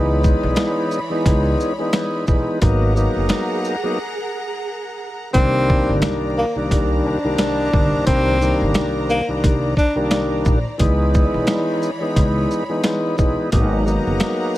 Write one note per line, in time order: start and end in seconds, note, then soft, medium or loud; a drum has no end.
0.00 0.32 C#2 loud
0.00 0.99 E3 medium
0.00 2.59 E3 medium
0.00 1.00 G#3 medium
0.00 1.00 B3 medium
0.00 1.00 D#4 loud
0.00 2.59 C#5 medium
0.00 2.57 D5 medium
0.00 2.59 B5 medium
0.24 kick loud
0.24 shaker medium
0.43 0.55 B1 medium
0.56 snare loud
0.56 snare medium
0.56 closed hi-hat medium
0.91 shaker medium
1.10 1.72 E3 medium
1.10 1.73 G#3 medium
1.10 1.73 B3 medium
1.10 1.73 D#4 loud
1.26 1.53 C#2 loud
1.26 kick loud
1.26 closed hi-hat medium
1.60 shaker medium
1.79 1.91 E3 medium
1.79 1.92 G#3 medium
1.79 1.93 B3 medium
1.79 1.94 D#4 medium
1.92 2.25 E3 medium
1.92 2.25 G#3 medium
1.92 2.25 B3 medium
1.92 2.26 D#4 medium
1.92 snare loud
1.92 closed hi-hat medium
2.26 2.44 B1 medium
2.26 2.59 E3 medium
2.26 2.59 G#3 medium
2.26 2.60 B3 medium
2.26 2.60 D#4 medium
2.26 kick loud
2.26 shaker medium
2.60 3.05 G#1 loud
2.60 2.93 F#3 loud
2.60 2.94 A#3 medium
2.60 2.94 B3 medium
2.60 2.94 D#4 loud
2.60 5.31 G#4 medium
2.60 5.31 A#4 medium
2.60 5.31 F#5 medium
2.60 5.31 A#5 medium
2.60 kick loud
2.60 closed hi-hat loud
2.95 3.75 F#3 medium
2.95 3.76 A#3 medium
2.95 3.76 B3 medium
2.95 3.76 D#4 medium
2.95 shaker medium
3.16 3.27 F#1 medium
3.29 snare loud
3.29 snare medium
3.29 closed hi-hat medium
3.64 shaker medium
3.83 3.98 F#3 medium
3.83 3.98 A#3 medium
3.83 3.99 B3 medium
3.83 3.99 D#4 loud
5.33 6.45 C2 medium
5.33 5.78 C2 loud
5.33 6.45 D#3 medium
5.33 10.77 D#3 medium
5.33 6.45 G3 medium
5.33 6.46 A#3 medium
5.33 5.98 C4 loud
5.33 6.46 D4 loud
5.33 10.77 C5 medium
5.33 8.04 D5 medium
5.33 10.77 A#5 medium
5.33 kick loud
5.33 closed hi-hat medium
5.70 kick loud
5.89 6.00 G1 medium
6.02 snare loud
6.02 snare medium
6.02 closed hi-hat medium
6.38 6.55 A#3 medium
6.56 7.18 C2 medium
6.56 7.18 D#3 medium
6.56 7.18 G3 medium
6.56 7.19 A#3 medium
6.56 7.19 D4 loud
6.71 6.98 C2 loud
6.71 kick loud
6.71 closed hi-hat medium
7.05 8.03 D4 medium
7.24 7.36 C2 medium
7.24 7.37 D#3 medium
7.24 7.38 G3 medium
7.24 7.38 A#3 medium
7.24 7.39 D4 loud
7.38 7.70 C2 medium
7.38 7.70 D#3 medium
7.38 7.71 G3 medium
7.38 7.71 A#3 medium
7.38 7.71 D4 medium
7.38 snare loud
7.38 closed hi-hat medium
7.72 7.89 G1 medium
7.72 8.04 C2 medium
7.72 8.05 D#3 medium
7.72 8.05 G3 medium
7.72 8.05 A#3 medium
7.72 8.05 D4 medium
7.72 kick loud
8.05 8.38 C2 loud
8.05 8.50 C2 loud
8.05 8.38 D#3 medium
8.05 8.39 G3 medium
8.05 8.39 A#3 medium
8.05 8.71 C4 loud
8.05 8.39 D4 loud
8.05 13.48 D5 medium
8.05 kick loud
8.05 closed hi-hat medium
8.40 9.21 C2 medium
8.40 9.21 D#3 medium
8.40 9.21 G3 medium
8.40 9.22 A#3 medium
8.40 9.22 D4 loud
8.40 shaker medium
8.62 8.73 G1 medium
8.74 snare loud
8.74 snare medium
8.74 closed hi-hat medium
9.09 9.27 A#3 loud
9.09 shaker medium
9.28 9.74 C2 medium
9.28 9.74 D#3 medium
9.28 9.74 G3 medium
9.28 9.75 A#3 medium
9.28 9.75 D4 loud
9.44 9.71 C2 medium
9.44 kick loud
9.44 closed hi-hat medium
9.77 9.95 D4 medium
9.77 kick medium
9.77 shaker medium
9.95 10.58 C2 medium
9.95 10.58 D#3 medium
9.95 10.59 G3 medium
9.95 10.59 A#3 medium
9.95 10.59 D4 loud
10.11 snare loud
10.11 closed hi-hat medium
10.45 10.62 A#1 medium
10.45 kick loud
10.45 shaker medium
10.78 11.23 C#2 loud
10.78 11.90 E3 medium
10.78 13.49 E3 medium
10.78 11.90 G#3 medium
10.78 11.91 B3 medium
10.78 11.91 D#4 loud
10.78 13.49 C#5 medium
10.78 13.49 B5 medium
10.78 kick loud
10.78 closed hi-hat loud
11.14 kick loud
11.14 shaker medium
11.34 11.45 B1 medium
11.47 snare loud
11.47 snare medium
11.47 closed hi-hat medium
11.82 shaker medium
12.00 12.63 E3 medium
12.00 12.63 G#3 medium
12.00 12.64 B3 medium
12.00 12.64 D#4 loud
12.16 12.44 C#2 loud
12.16 kick loud
12.16 closed hi-hat medium
12.51 shaker medium
12.69 12.82 E3 medium
12.69 12.82 G#3 medium
12.69 12.83 B3 medium
12.69 12.84 D#4 medium
12.83 13.15 E3 medium
12.83 13.16 G#3 medium
12.83 13.16 B3 medium
12.83 13.17 D#4 medium
12.83 snare loud
12.83 closed hi-hat medium
13.17 13.35 B1 medium
13.17 13.49 E3 medium
13.17 13.50 G#3 medium
13.17 13.50 B3 medium
13.17 13.51 D#4 medium
13.17 kick loud
13.17 shaker soft
13.52 13.96 G#1 loud
13.52 13.84 F#3 loud
13.52 13.84 A#3 medium
13.52 13.85 B3 medium
13.52 13.85 D#4 loud
13.52 14.58 G#4 medium
13.52 14.58 A#4 medium
13.52 14.58 F#5 medium
13.52 14.58 A#5 medium
13.52 kick loud
13.52 closed hi-hat medium
13.85 14.58 F#3 medium
13.85 14.58 A#3 medium
13.85 14.58 B3 medium
13.85 14.58 D#4 medium
13.85 shaker medium
14.07 14.18 F#1 medium
14.20 snare loud
14.20 snare medium
14.20 closed hi-hat medium